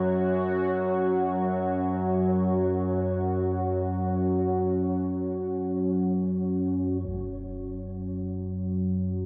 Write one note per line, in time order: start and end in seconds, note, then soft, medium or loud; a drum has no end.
0.00 7.03 F#2 medium
0.00 7.04 F#3 medium
0.00 9.26 F#3 medium
0.00 9.26 C#4 medium
0.00 9.26 F#4 medium
0.00 7.07 C#5 medium
7.04 9.26 F#2 medium
7.04 9.26 F#3 medium
7.04 impact medium